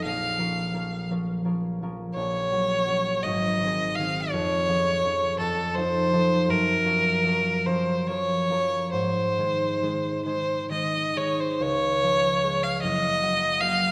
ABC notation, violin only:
X:1
M:6/8
L:1/16
Q:3/8=54
K:Bbm
V:1 name="Violin"
f6 z6 | [K:Db] d6 e4 f2 | d6 =A2 c4 | B6 c2 d4 |
c6 c2 e2 d c | d4- d f e4 f2 |]